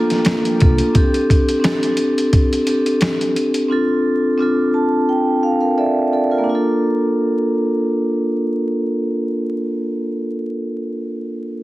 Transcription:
0.00 0.91 F3 medium
0.00 0.58 A#3 medium
0.00 0.91 A#3 medium
0.00 0.60 D4 medium
0.00 0.61 F4 medium
0.00 0.91 G4 medium
0.00 0.62 A4 loud
0.10 snare soft
0.10 closed hi-hat medium
0.25 snare loud
0.25 snare medium
0.25 closed hi-hat medium
0.45 closed hi-hat soft
0.58 0.79 C2 medium
0.58 0.92 A#3 medium
0.58 0.93 D4 medium
0.58 0.93 F4 medium
0.58 kick loud
0.58 closed hi-hat medium
0.62 0.94 A4 medium
0.78 closed hi-hat medium
0.94 1.59 C4 medium
0.94 1.60 D4 medium
0.94 1.61 G4 medium
0.94 kick loud
0.94 closed hi-hat medium
0.98 1.62 A4 medium
1.14 closed hi-hat medium
1.30 kick medium
1.30 closed hi-hat medium
1.49 closed hi-hat medium
1.60 2.60 C4 medium
1.60 2.60 D4 medium
1.60 2.61 G4 medium
1.64 2.62 A4 loud
1.64 snare loud
1.64 snare medium
1.64 closed hi-hat loud
1.83 closed hi-hat medium
1.97 closed hi-hat medium
2.18 closed hi-hat medium
2.33 kick loud
2.33 closed hi-hat loud
2.53 closed hi-hat medium
2.65 3.64 C4 medium
2.65 3.65 D4 medium
2.65 3.65 G4 medium
2.65 closed hi-hat medium
2.69 3.66 A4 loud
2.86 closed hi-hat medium
3.01 snare loud
3.01 snare medium
3.01 closed hi-hat medium
3.21 closed hi-hat soft
3.36 closed hi-hat medium
3.54 closed hi-hat medium
3.68 4.35 C4 medium
3.68 4.35 D4 medium
3.68 4.36 F4 medium
3.72 4.37 A4 loud
4.38 5.36 C4 loud
4.38 5.37 D4 medium
4.38 5.38 F4 medium
4.42 5.39 A4 loud
4.74 5.06 A5 medium
5.09 5.41 G5 medium
5.43 5.59 F5 medium
5.61 5.76 A#4 medium
5.61 5.76 F5 medium
5.78 6.11 A4 medium
5.78 6.11 D5 medium
5.78 6.10 E5 medium
6.13 6.32 A4 medium
6.13 6.31 D5 medium
6.31 6.48 F4 medium
6.31 6.64 A#4 medium
6.38 10.64 A#3 medium
6.44 10.67 D4 medium
6.49 10.70 F4 medium
6.55 10.73 A4 loud

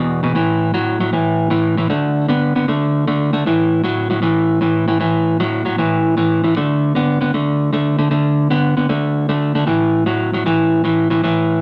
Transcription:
0.00 0.20 E2 medium
0.00 0.21 B2 medium
0.23 0.35 E2 medium
0.23 0.35 B2 loud
0.35 0.72 A2 medium
0.35 0.72 E3 medium
0.74 0.98 A2 medium
0.74 0.98 F#3 loud
1.00 1.12 A2 medium
1.00 1.12 F#3 medium
1.13 1.49 A2 medium
1.13 1.50 E3 medium
1.50 1.75 A2 medium
1.50 1.75 E3 medium
1.77 1.89 A2 medium
1.77 1.90 E3 medium
1.90 2.27 D3 medium
1.90 2.27 A3 medium
2.28 2.53 D3 medium
2.28 2.53 B3 loud
2.55 2.67 D3 medium
2.55 2.67 B3 medium
2.68 3.05 D3 medium
2.68 3.05 A3 medium
3.07 3.31 D3 medium
3.07 3.31 A3 medium
3.33 3.45 D3 medium
3.33 3.45 A3 medium
3.46 3.83 A2 medium
3.46 3.83 E3 loud
3.84 4.08 A2 medium
3.84 4.08 F#3 medium
4.10 4.21 A2 medium
4.10 4.22 F#3 medium
4.22 4.59 A2 medium
4.22 4.59 E3 medium
4.61 4.85 A2 medium
4.61 4.86 E3 medium
4.88 4.99 A2 medium
4.88 4.99 E3 medium
5.00 5.37 A2 medium
5.00 5.37 E3 loud
5.40 5.63 A2 medium
5.40 5.64 F#3 medium
5.65 5.77 A2 medium
5.65 5.77 F#3 medium
5.78 6.15 A2 medium
5.78 6.15 E3 medium
6.17 6.41 A2 medium
6.17 6.41 E3 medium
6.44 6.55 A2 medium
6.44 6.56 E3 medium
6.57 6.93 D3 medium
6.57 6.93 A3 medium
6.95 7.19 D3 medium
6.95 7.19 B3 medium
7.21 7.33 D3 medium
7.21 7.33 B3 medium
7.34 7.70 D3 medium
7.34 7.71 A3 medium
7.73 7.96 D3 medium
7.73 7.97 A3 medium
7.99 8.10 D3 medium
7.99 8.10 A3 medium
8.11 8.48 D3 medium
8.11 8.48 A3 medium
8.50 8.74 D3 medium
8.50 8.74 B3 medium
8.77 8.88 D3 medium
8.77 8.89 B3 medium
8.89 9.26 D3 medium
8.89 9.26 A3 medium
9.29 9.52 D3 medium
9.29 9.52 A3 loud
9.55 9.66 D3 medium
9.55 9.66 A3 medium
9.67 10.03 A2 medium
9.67 10.04 E3 medium
10.06 10.30 A2 medium
10.06 10.30 F#3 medium
10.33 10.44 A2 medium
10.33 10.45 F#3 medium
10.46 10.82 A2 medium
10.46 10.82 E3 loud
10.84 11.07 A2 medium
10.84 11.08 E3 medium
11.10 11.22 A2 medium
11.10 11.22 E3 medium
11.24 11.59 A2 medium
11.24 11.60 E3 medium

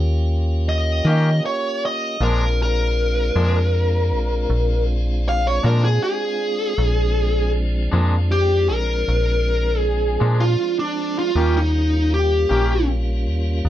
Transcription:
0.00 1.02 D#2 medium
0.00 2.17 A#3 medium
0.00 2.17 C#4 medium
0.00 2.17 F4 medium
0.00 2.18 G4 medium
0.69 1.43 D#5 medium
1.05 1.41 D#3 loud
1.05 1.30 D#3 medium
1.05 1.30 A#3 medium
1.05 1.30 C#4 medium
1.05 1.29 G4 medium
1.46 1.82 C#5 medium
1.85 2.21 D#5 medium
2.20 3.31 A#1 loud
2.20 2.44 A#2 medium
2.20 2.44 F3 medium
2.20 6.74 G#3 medium
2.20 2.44 G#3 medium
2.20 6.75 C4 medium
2.20 6.74 D4 medium
2.20 2.45 D4 medium
2.20 6.74 F4 medium
2.20 2.59 A#4 medium
2.62 4.85 A#4 loud
3.36 4.13 F2 loud
3.36 3.59 A#2 soft
3.36 3.59 F3 medium
3.36 3.58 G#3 medium
3.36 3.58 D4 medium
4.12 4.47 A#1 medium
4.50 5.60 A#1 loud
5.29 5.46 F5 medium
5.47 5.65 C#5 medium
5.63 5.99 A#2 loud
5.63 5.87 A#2 medium
5.63 5.87 F3 medium
5.63 5.87 G#3 medium
5.63 5.87 D4 medium
5.63 5.84 A#4 medium
5.84 6.02 G#4 medium
6.04 7.51 G#4 medium
6.78 7.89 A#1 loud
6.78 11.32 F3 medium
6.78 11.32 G#3 medium
6.78 11.32 C4 medium
6.78 11.32 D4 medium
7.92 8.71 F2 medium
7.92 8.16 A#2 medium
7.92 8.16 F3 medium
7.92 8.15 G#3 medium
7.92 8.15 D4 medium
8.32 8.68 G4 medium
8.69 9.04 A#1 medium
8.69 9.79 A#4 medium
9.08 10.18 A#1 medium
9.79 10.37 G#4 medium
10.20 10.57 A#2 loud
10.20 10.45 A#2 medium
10.20 10.44 F3 medium
10.20 10.44 G#3 medium
10.20 10.44 D4 medium
10.40 10.78 F4 medium
10.79 11.16 D4 medium
11.19 11.55 F4 medium
11.35 12.46 D#2 loud
11.35 11.59 D#3 medium
11.35 13.69 G3 medium
11.35 13.69 A#3 medium
11.35 11.59 A#3 medium
11.35 13.69 C#4 medium
11.35 11.59 C#4 medium
11.35 13.69 F4 medium
11.35 11.60 G4 medium
11.57 12.11 D#4 medium
12.14 12.87 G4 medium
12.49 13.28 A#1 medium
12.49 12.73 D#3 medium
12.49 12.73 A#3 medium
12.49 12.73 C#4 medium
12.49 12.73 G4 medium
13.27 13.62 D#2 medium
13.65 13.69 D#2 medium

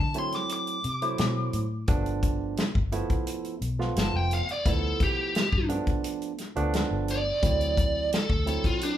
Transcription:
0.00 0.25 D3 medium
0.00 0.16 A5 medium
0.14 0.78 F#3 medium
0.14 0.78 A3 medium
0.14 0.78 C4 medium
0.14 0.78 E4 medium
0.14 closed hi-hat medium
0.19 0.34 C6 medium
0.32 0.51 D6 medium
0.32 snare soft
0.32 closed hi-hat soft
0.49 1.86 D6 loud
0.49 closed hi-hat medium
0.67 closed hi-hat soft
0.84 1.16 C3 medium
0.84 closed hi-hat medium
1.02 1.64 F#3 medium
1.02 1.65 A3 medium
1.02 1.65 E4 medium
1.02 1.65 C5 medium
1.02 closed hi-hat soft
1.18 1.50 B2 medium
1.18 snare loud
1.18 closed hi-hat medium
1.53 1.85 A2 medium
1.53 closed hi-hat medium
1.88 2.56 G1 medium
1.88 2.63 F3 medium
1.88 2.63 A3 medium
1.88 2.63 B3 medium
1.88 2.64 D4 medium
1.88 kick loud
1.88 closed hi-hat medium
2.06 closed hi-hat soft
2.23 kick medium
2.23 closed hi-hat medium
2.57 snare loud
2.57 closed hi-hat medium
2.75 3.02 G1 medium
2.75 kick medium
2.92 3.55 F3 medium
2.92 3.55 A3 medium
2.92 3.55 B3 medium
2.92 3.55 E4 medium
2.92 closed hi-hat medium
3.10 kick medium
3.10 closed hi-hat soft
3.27 closed hi-hat medium
3.45 closed hi-hat soft
3.61 3.88 B1 medium
3.61 closed hi-hat medium
3.79 4.41 F3 medium
3.79 4.42 A3 medium
3.79 4.42 B3 medium
3.79 4.42 F4 medium
3.79 snare soft
3.96 4.10 G1 medium
3.96 4.15 A5 medium
3.96 snare loud
3.96 closed hi-hat medium
4.14 4.41 F1 medium
4.14 4.32 G5 medium
4.31 4.49 F5 medium
4.31 closed hi-hat medium
4.49 4.66 D5 medium
4.49 closed hi-hat soft
4.65 4.92 D2 medium
4.65 5.40 F3 medium
4.65 5.41 A3 medium
4.65 5.41 B3 medium
4.65 5.41 E4 medium
4.65 5.01 A4 medium
4.65 kick loud
4.65 closed hi-hat medium
5.00 5.69 G4 medium
5.00 kick medium
5.00 closed hi-hat medium
5.35 snare loud
5.35 closed hi-hat medium
5.53 5.79 G2 medium
5.53 kick medium
5.69 6.32 F3 medium
5.69 6.32 A3 medium
5.69 6.32 B3 medium
5.69 6.32 D4 medium
5.69 closed hi-hat medium
5.87 kick medium
5.87 closed hi-hat soft
6.04 closed hi-hat medium
6.22 closed hi-hat soft
6.38 snare soft
6.38 closed hi-hat medium
6.56 6.83 D2 medium
6.56 7.18 F3 medium
6.56 7.18 A3 medium
6.56 7.19 B3 medium
6.56 7.19 D4 loud
6.56 closed hi-hat soft
6.74 snare loud
6.74 closed hi-hat medium
6.91 7.31 G1 medium
7.08 8.10 D5 medium
7.08 closed hi-hat medium
7.42 8.10 D2 medium
7.42 8.17 F#3 medium
7.42 8.18 A3 medium
7.42 8.18 C4 medium
7.42 8.18 E4 medium
7.42 kick loud
7.42 closed hi-hat medium
7.61 closed hi-hat soft
7.77 kick medium
7.77 closed hi-hat medium
8.13 8.47 A4 medium
8.13 snare loud
8.13 closed hi-hat medium
8.30 8.56 D2 loud
8.30 kick medium
8.46 8.97 F#3 medium
8.46 8.97 A3 medium
8.46 8.97 C4 medium
8.46 8.97 E4 medium
8.46 8.65 A4 medium
8.46 closed hi-hat medium
8.64 8.81 F4 medium
8.64 kick medium
8.64 closed hi-hat soft
8.81 8.97 D4 loud
8.81 closed hi-hat medium

